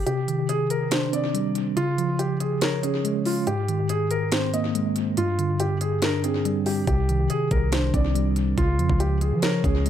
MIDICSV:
0, 0, Header, 1, 5, 480
1, 0, Start_track
1, 0, Key_signature, -3, "minor"
1, 0, Tempo, 425532
1, 74, Time_signature, 4, 2, 24, 8
1, 11163, End_track
2, 0, Start_track
2, 0, Title_t, "Felt piano"
2, 0, Program_c, 0, 0
2, 73, Note_on_c, 0, 67, 90
2, 525, Note_off_c, 0, 67, 0
2, 555, Note_on_c, 0, 68, 95
2, 746, Note_off_c, 0, 68, 0
2, 796, Note_on_c, 0, 70, 79
2, 986, Note_off_c, 0, 70, 0
2, 1035, Note_on_c, 0, 72, 73
2, 1226, Note_off_c, 0, 72, 0
2, 1276, Note_on_c, 0, 74, 72
2, 1952, Note_off_c, 0, 74, 0
2, 1992, Note_on_c, 0, 65, 105
2, 2445, Note_off_c, 0, 65, 0
2, 2472, Note_on_c, 0, 67, 82
2, 2664, Note_off_c, 0, 67, 0
2, 2713, Note_on_c, 0, 68, 77
2, 2904, Note_off_c, 0, 68, 0
2, 2952, Note_on_c, 0, 70, 78
2, 3144, Note_off_c, 0, 70, 0
2, 3191, Note_on_c, 0, 68, 71
2, 3644, Note_off_c, 0, 68, 0
2, 3677, Note_on_c, 0, 65, 78
2, 3867, Note_off_c, 0, 65, 0
2, 3915, Note_on_c, 0, 67, 95
2, 4366, Note_off_c, 0, 67, 0
2, 4395, Note_on_c, 0, 68, 95
2, 4586, Note_off_c, 0, 68, 0
2, 4635, Note_on_c, 0, 70, 83
2, 4826, Note_off_c, 0, 70, 0
2, 4874, Note_on_c, 0, 72, 83
2, 5065, Note_off_c, 0, 72, 0
2, 5116, Note_on_c, 0, 75, 80
2, 5792, Note_off_c, 0, 75, 0
2, 5837, Note_on_c, 0, 65, 95
2, 6287, Note_off_c, 0, 65, 0
2, 6316, Note_on_c, 0, 67, 85
2, 6506, Note_off_c, 0, 67, 0
2, 6556, Note_on_c, 0, 68, 77
2, 6746, Note_off_c, 0, 68, 0
2, 6799, Note_on_c, 0, 70, 76
2, 6988, Note_off_c, 0, 70, 0
2, 7038, Note_on_c, 0, 68, 74
2, 7488, Note_off_c, 0, 68, 0
2, 7516, Note_on_c, 0, 67, 74
2, 7706, Note_off_c, 0, 67, 0
2, 7754, Note_on_c, 0, 67, 91
2, 8206, Note_off_c, 0, 67, 0
2, 8236, Note_on_c, 0, 68, 92
2, 8426, Note_off_c, 0, 68, 0
2, 8477, Note_on_c, 0, 70, 81
2, 8667, Note_off_c, 0, 70, 0
2, 8717, Note_on_c, 0, 72, 74
2, 8907, Note_off_c, 0, 72, 0
2, 8955, Note_on_c, 0, 74, 77
2, 9632, Note_off_c, 0, 74, 0
2, 9673, Note_on_c, 0, 65, 104
2, 10125, Note_off_c, 0, 65, 0
2, 10153, Note_on_c, 0, 67, 86
2, 10344, Note_off_c, 0, 67, 0
2, 10395, Note_on_c, 0, 68, 75
2, 10585, Note_off_c, 0, 68, 0
2, 10633, Note_on_c, 0, 70, 78
2, 10825, Note_off_c, 0, 70, 0
2, 10872, Note_on_c, 0, 68, 75
2, 11163, Note_off_c, 0, 68, 0
2, 11163, End_track
3, 0, Start_track
3, 0, Title_t, "Tine electric piano"
3, 0, Program_c, 1, 4
3, 76, Note_on_c, 1, 48, 91
3, 278, Control_c, 1, 64, 127
3, 315, Note_on_c, 1, 51, 74
3, 1033, Note_on_c, 1, 62, 94
3, 1270, Note_on_c, 1, 60, 79
3, 1275, Note_off_c, 1, 48, 0
3, 1512, Note_on_c, 1, 55, 88
3, 1515, Note_off_c, 1, 51, 0
3, 1993, Note_off_c, 1, 55, 0
3, 1993, Note_off_c, 1, 60, 0
3, 1994, Note_off_c, 1, 62, 0
3, 1994, Note_on_c, 1, 49, 101
3, 2008, Control_c, 1, 64, 0
3, 2199, Control_c, 1, 64, 127
3, 2233, Note_on_c, 1, 53, 81
3, 2954, Note_on_c, 1, 73, 98
3, 3194, Note_off_c, 1, 49, 0
3, 3197, Note_on_c, 1, 61, 90
3, 3434, Note_off_c, 1, 53, 0
3, 3435, Note_on_c, 1, 56, 92
3, 3914, Note_off_c, 1, 73, 0
3, 3915, Note_off_c, 1, 56, 0
3, 3916, Note_off_c, 1, 61, 0
3, 3917, Note_on_c, 1, 44, 88
3, 3930, Control_c, 1, 64, 0
3, 4154, Control_c, 1, 64, 127
3, 4158, Note_on_c, 1, 51, 79
3, 4873, Note_on_c, 1, 60, 102
3, 5116, Note_off_c, 1, 44, 0
3, 5117, Note_on_c, 1, 58, 88
3, 5357, Note_off_c, 1, 51, 0
3, 5358, Note_on_c, 1, 56, 86
3, 5834, Note_off_c, 1, 60, 0
3, 5836, Note_off_c, 1, 58, 0
3, 5837, Note_off_c, 1, 56, 0
3, 5838, Note_on_c, 1, 43, 93
3, 5852, Control_c, 1, 64, 0
3, 6052, Control_c, 1, 64, 127
3, 6078, Note_on_c, 1, 50, 81
3, 6796, Note_on_c, 1, 62, 98
3, 7036, Note_off_c, 1, 43, 0
3, 7040, Note_on_c, 1, 60, 88
3, 7276, Note_off_c, 1, 50, 0
3, 7279, Note_on_c, 1, 55, 93
3, 7756, Note_off_c, 1, 62, 0
3, 7756, Note_on_c, 1, 48, 91
3, 7757, Note_off_c, 1, 55, 0
3, 7757, Note_off_c, 1, 60, 0
3, 7770, Control_c, 1, 64, 0
3, 7943, Control_c, 1, 64, 127
3, 7995, Note_on_c, 1, 51, 77
3, 8714, Note_on_c, 1, 62, 94
3, 8951, Note_on_c, 1, 60, 84
3, 8955, Note_off_c, 1, 48, 0
3, 9193, Note_on_c, 1, 55, 92
3, 9195, Note_off_c, 1, 51, 0
3, 9673, Note_off_c, 1, 60, 0
3, 9674, Note_off_c, 1, 55, 0
3, 9674, Note_off_c, 1, 62, 0
3, 9675, Note_on_c, 1, 49, 101
3, 9688, Control_c, 1, 64, 0
3, 9868, Control_c, 1, 64, 127
3, 9913, Note_on_c, 1, 53, 78
3, 10634, Note_on_c, 1, 73, 101
3, 10875, Note_off_c, 1, 49, 0
3, 10878, Note_on_c, 1, 61, 89
3, 11114, Note_off_c, 1, 53, 0
3, 11115, Note_on_c, 1, 56, 90
3, 11163, Note_off_c, 1, 56, 0
3, 11163, Note_off_c, 1, 61, 0
3, 11163, Note_off_c, 1, 73, 0
3, 11163, End_track
4, 0, Start_track
4, 0, Title_t, "808-style bass"
4, 0, Program_c, 2, 38
4, 7755, Note_on_c, 2, 36, 115
4, 8216, Note_off_c, 2, 36, 0
4, 8474, Note_on_c, 2, 36, 105
4, 8935, Note_off_c, 2, 36, 0
4, 8954, Note_on_c, 2, 36, 103
4, 9646, Note_off_c, 2, 36, 0
4, 9675, Note_on_c, 2, 37, 105
4, 9915, Note_on_c, 2, 41, 93
4, 9932, Note_off_c, 2, 37, 0
4, 10029, Note_off_c, 2, 41, 0
4, 10034, Note_on_c, 2, 37, 105
4, 10515, Note_on_c, 2, 53, 97
4, 10532, Note_off_c, 2, 37, 0
4, 10857, Note_off_c, 2, 53, 0
4, 10875, Note_on_c, 2, 37, 102
4, 11163, Note_off_c, 2, 37, 0
4, 11163, End_track
5, 0, Start_track
5, 0, Title_t, "Drums"
5, 74, Note_on_c, 9, 42, 85
5, 187, Note_off_c, 9, 42, 0
5, 318, Note_on_c, 9, 42, 69
5, 430, Note_off_c, 9, 42, 0
5, 553, Note_on_c, 9, 42, 88
5, 666, Note_off_c, 9, 42, 0
5, 792, Note_on_c, 9, 42, 82
5, 905, Note_off_c, 9, 42, 0
5, 1029, Note_on_c, 9, 42, 84
5, 1034, Note_on_c, 9, 38, 116
5, 1141, Note_off_c, 9, 42, 0
5, 1147, Note_off_c, 9, 38, 0
5, 1277, Note_on_c, 9, 42, 81
5, 1390, Note_off_c, 9, 42, 0
5, 1519, Note_on_c, 9, 42, 81
5, 1631, Note_off_c, 9, 42, 0
5, 1752, Note_on_c, 9, 42, 69
5, 1865, Note_off_c, 9, 42, 0
5, 1994, Note_on_c, 9, 42, 82
5, 2107, Note_off_c, 9, 42, 0
5, 2237, Note_on_c, 9, 42, 69
5, 2350, Note_off_c, 9, 42, 0
5, 2473, Note_on_c, 9, 42, 86
5, 2586, Note_off_c, 9, 42, 0
5, 2712, Note_on_c, 9, 42, 79
5, 2825, Note_off_c, 9, 42, 0
5, 2949, Note_on_c, 9, 42, 82
5, 2954, Note_on_c, 9, 38, 118
5, 3061, Note_off_c, 9, 42, 0
5, 3067, Note_off_c, 9, 38, 0
5, 3197, Note_on_c, 9, 42, 84
5, 3309, Note_off_c, 9, 42, 0
5, 3438, Note_on_c, 9, 42, 78
5, 3551, Note_off_c, 9, 42, 0
5, 3671, Note_on_c, 9, 46, 77
5, 3784, Note_off_c, 9, 46, 0
5, 3914, Note_on_c, 9, 42, 84
5, 4027, Note_off_c, 9, 42, 0
5, 4156, Note_on_c, 9, 42, 67
5, 4269, Note_off_c, 9, 42, 0
5, 4392, Note_on_c, 9, 42, 90
5, 4505, Note_off_c, 9, 42, 0
5, 4632, Note_on_c, 9, 42, 80
5, 4744, Note_off_c, 9, 42, 0
5, 4869, Note_on_c, 9, 42, 82
5, 4874, Note_on_c, 9, 38, 113
5, 4982, Note_off_c, 9, 42, 0
5, 4987, Note_off_c, 9, 38, 0
5, 5117, Note_on_c, 9, 42, 84
5, 5230, Note_off_c, 9, 42, 0
5, 5359, Note_on_c, 9, 42, 82
5, 5472, Note_off_c, 9, 42, 0
5, 5592, Note_on_c, 9, 42, 72
5, 5705, Note_off_c, 9, 42, 0
5, 5834, Note_on_c, 9, 42, 84
5, 5947, Note_off_c, 9, 42, 0
5, 6077, Note_on_c, 9, 42, 70
5, 6190, Note_off_c, 9, 42, 0
5, 6313, Note_on_c, 9, 42, 89
5, 6426, Note_off_c, 9, 42, 0
5, 6553, Note_on_c, 9, 42, 79
5, 6665, Note_off_c, 9, 42, 0
5, 6789, Note_on_c, 9, 42, 82
5, 6795, Note_on_c, 9, 38, 117
5, 6902, Note_off_c, 9, 42, 0
5, 6907, Note_off_c, 9, 38, 0
5, 7037, Note_on_c, 9, 42, 83
5, 7150, Note_off_c, 9, 42, 0
5, 7279, Note_on_c, 9, 42, 78
5, 7392, Note_off_c, 9, 42, 0
5, 7512, Note_on_c, 9, 46, 78
5, 7625, Note_off_c, 9, 46, 0
5, 7754, Note_on_c, 9, 42, 82
5, 7755, Note_on_c, 9, 36, 115
5, 7867, Note_off_c, 9, 36, 0
5, 7867, Note_off_c, 9, 42, 0
5, 7997, Note_on_c, 9, 42, 70
5, 8110, Note_off_c, 9, 42, 0
5, 8232, Note_on_c, 9, 42, 91
5, 8345, Note_off_c, 9, 42, 0
5, 8472, Note_on_c, 9, 42, 79
5, 8474, Note_on_c, 9, 36, 99
5, 8584, Note_off_c, 9, 42, 0
5, 8587, Note_off_c, 9, 36, 0
5, 8709, Note_on_c, 9, 42, 84
5, 8714, Note_on_c, 9, 38, 121
5, 8822, Note_off_c, 9, 42, 0
5, 8827, Note_off_c, 9, 38, 0
5, 8954, Note_on_c, 9, 36, 90
5, 8957, Note_on_c, 9, 42, 81
5, 9067, Note_off_c, 9, 36, 0
5, 9070, Note_off_c, 9, 42, 0
5, 9199, Note_on_c, 9, 42, 77
5, 9311, Note_off_c, 9, 42, 0
5, 9432, Note_on_c, 9, 42, 70
5, 9544, Note_off_c, 9, 42, 0
5, 9674, Note_on_c, 9, 42, 84
5, 9675, Note_on_c, 9, 36, 113
5, 9787, Note_off_c, 9, 36, 0
5, 9787, Note_off_c, 9, 42, 0
5, 9917, Note_on_c, 9, 42, 71
5, 10030, Note_off_c, 9, 42, 0
5, 10034, Note_on_c, 9, 36, 98
5, 10147, Note_off_c, 9, 36, 0
5, 10153, Note_on_c, 9, 42, 91
5, 10266, Note_off_c, 9, 42, 0
5, 10392, Note_on_c, 9, 42, 81
5, 10505, Note_off_c, 9, 42, 0
5, 10629, Note_on_c, 9, 42, 82
5, 10635, Note_on_c, 9, 38, 120
5, 10742, Note_off_c, 9, 42, 0
5, 10748, Note_off_c, 9, 38, 0
5, 10875, Note_on_c, 9, 36, 90
5, 10878, Note_on_c, 9, 42, 82
5, 10988, Note_off_c, 9, 36, 0
5, 10990, Note_off_c, 9, 42, 0
5, 11119, Note_on_c, 9, 42, 79
5, 11163, Note_off_c, 9, 42, 0
5, 11163, End_track
0, 0, End_of_file